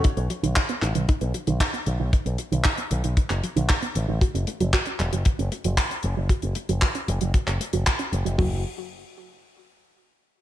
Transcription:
<<
  \new Staff \with { instrumentName = "Synth arpeggio sound" } { \time 4/4 \key fis \dorian \tempo 4 = 115 dis'16 b16 fis16 dis16 dis'16 b16 dis16 dis16 dis'16 b16 fis16 dis16 dis'16 b16 dis16 dis16 | dis'16 b16 fis16 dis16 dis'16 b16 dis16 dis16 dis'16 b16 fis16 dis16 dis'16 b16 dis16 dis16 | fis'16 cis'16 a16 fis16 fis'16 cis'16 fis16 fis16 fis'16 cis'16 a16 fis16 fis'16 cis'16 fis16 fis16 | fis'16 cis'16 a16 fis16 fis'16 cis'16 fis16 fis16 fis'16 cis'16 a16 fis16 fis'16 cis'16 fis16 fis16 |
fis8 r2. r8 | }
  \new Staff \with { instrumentName = "Picked electric bass" } { \clef bass \time 4/4 \key fis \dorian r16 b,,16 r16 b,,16 r8 a,,16 b,,16 r16 b,,16 r16 b,,16 r8 b,,16 b,,16 | r16 b,,16 r16 b,,16 r8 b,,16 b,,16 r16 fis,,16 r16 b,,16 r8 a,,16 a,,16 | r16 fis,,16 r16 fis,,16 r8 e,,16 fis,,16 r16 fis,,16 r16 fis,,16 r8 fis,,16 fis,,16 | r16 fis,,16 r16 fis,,16 r8 fis,,16 fis,,16 r16 fis,,16 r16 fis,,16 r8 fis,,16 fis,,16 |
fis,,8 r2. r8 | }
  \new DrumStaff \with { instrumentName = "Drums" } \drummode { \time 4/4 <hh bd>16 hh16 hh16 hh16 <hc hh bd>16 hh16 <hc hh>16 hh16 <hh bd>16 hh16 hh16 hh16 <hc hh bd>16 hh16 hh8 | <hh bd>16 hh16 hh16 hh16 <hc hh bd>16 hh16 hh16 hh16 <hh bd>16 <hc hh>16 hh16 hh16 <hc hh bd>16 hh16 hh8 | <hh bd>16 hh16 hh16 hh16 <hc hh bd>16 hh16 <hc hh>16 hh16 <hh bd>16 hh16 hh16 hh16 <hc hh bd>16 hh16 hh8 | <hh bd>16 hh16 hh16 hh16 <hc hh bd>16 hh16 hh16 hh16 <hh bd>16 <hc hh>16 hh16 hh16 <hc hh bd>16 hh16 hh16 hh16 |
<hho bd tomfh>4 r4 r4 r4 | }
>>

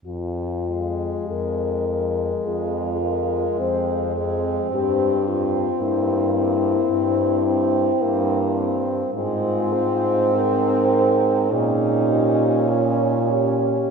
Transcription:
<<
  \new Staff \with { instrumentName = "French horn" } { \time 4/4 \key f \minor \tempo 4 = 53 f'4 bes'4 aes'8 bes'8 c''8 aes'8 | g'8 f'8 e'2~ e'8. r16 | f'4 bes'4 aes'8 g'8 f'8 g'8 | }
  \new Staff \with { instrumentName = "French horn" } { \time 4/4 \key f \minor r2 f'4 c'4~ | c'4 bes4 c'8 c'8 bes8. r16 | aes8 c'4. ees'4 des'4 | }
  \new Staff \with { instrumentName = "French horn" } { \time 4/4 \key f \minor r8 aes4 aes4 aes4 aes8 | c'8 c'4 c'4 c'4 c'8 | c'2 des'2 | }
  \new Staff \with { instrumentName = "French horn" } { \clef bass \time 4/4 \key f \minor f,4 f,4 f,4 f,4 | g,4 g,4 g,4 g,4 | aes,2 bes,2 | }
>>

